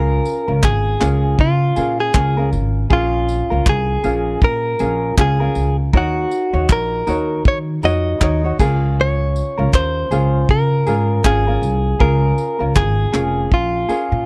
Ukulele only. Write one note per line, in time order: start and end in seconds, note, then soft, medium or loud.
0.00 0.48 C#4 medium
0.00 0.47 F4 medium
0.00 0.47 G#4 medium
0.00 0.46 A#4 medium
0.48 1.00 C#4 soft
0.48 1.00 F4 soft
0.48 1.01 A#4 medium
1.00 1.76 C#4 medium
1.00 1.77 F4 medium
1.00 1.75 G#4 medium
1.00 1.78 A#4 medium
1.76 2.14 C#4 medium
1.76 2.14 F4 medium
1.76 2.13 G#4 medium
1.76 2.15 A#4 medium
2.14 2.37 C#4 medium
2.14 2.38 F4 medium
2.14 2.37 G#4 medium
2.14 2.36 A#4 medium
2.37 2.89 C#4 soft
2.37 2.90 F4 soft
2.37 2.90 A#4 medium
2.90 3.51 C#4 medium
2.90 3.50 F4 medium
2.90 3.50 G#4 medium
2.90 3.49 A#4 medium
3.50 4.03 C#4 soft
3.50 4.04 F4 soft
3.50 4.03 A#4 medium
4.04 4.80 C#4 medium
4.04 4.80 F4 medium
4.04 4.78 G#4 medium
4.04 4.81 A#4 medium
4.80 5.17 C#4 medium
4.80 5.18 F4 medium
4.80 5.17 G#4 medium
4.80 5.18 A#4 medium
5.18 5.40 C#4 medium
5.18 5.40 F4 medium
5.18 5.40 G#4 medium
5.18 5.39 A#4 medium
5.40 5.93 C#4 soft
5.40 5.94 F4 soft
5.40 5.92 A#4 medium
5.93 6.54 D#4 medium
5.93 6.53 F#4 medium
5.93 6.54 A#4 medium
5.93 6.52 C#5 medium
6.53 7.06 D#4 soft
6.53 7.06 F#4 medium
6.53 7.07 C#5 medium
7.07 7.82 D#4 medium
7.07 7.83 F#4 medium
7.07 7.83 A#4 medium
7.07 7.84 C#5 medium
7.83 8.20 D#4 medium
7.83 8.21 F#4 medium
7.83 8.19 A#4 medium
7.83 8.21 C#5 medium
8.20 8.44 D#4 medium
8.20 8.44 F#4 medium
8.20 8.43 A#4 medium
8.20 8.43 C#5 medium
8.44 8.60 D#4 soft
8.44 8.59 F#4 soft
8.44 8.59 C#5 medium
8.60 9.59 C#4 medium
8.60 9.59 F4 medium
8.60 9.61 G#4 medium
8.60 9.56 A#4 medium
9.58 10.11 C#4 soft
9.58 10.11 F4 medium
9.58 10.10 A#4 medium
10.11 10.87 C#4 medium
10.11 10.88 F4 medium
10.11 10.86 G#4 medium
10.11 10.87 A#4 medium
10.86 11.24 C#4 medium
10.86 11.24 F4 medium
10.86 11.23 G#4 medium
10.86 11.25 A#4 medium
11.24 11.47 C#4 medium
11.24 11.47 F4 medium
11.24 11.47 G#4 medium
11.24 11.46 A#4 medium
11.47 11.99 C#4 soft
11.47 11.99 F4 medium
11.47 12.00 A#4 medium
11.99 12.60 C#4 medium
11.99 12.59 F4 medium
11.99 12.60 G#4 medium
11.99 12.58 A#4 medium
12.59 13.12 C#4 soft
12.59 13.12 F4 medium
12.59 13.13 A#4 medium
13.12 13.89 C#4 medium
13.12 13.89 F4 medium
13.12 13.88 G#4 medium
13.12 13.89 A#4 medium
13.88 14.26 C#4 medium
13.88 14.26 F4 medium
13.88 14.26 G#4 medium
13.88 14.26 A#4 medium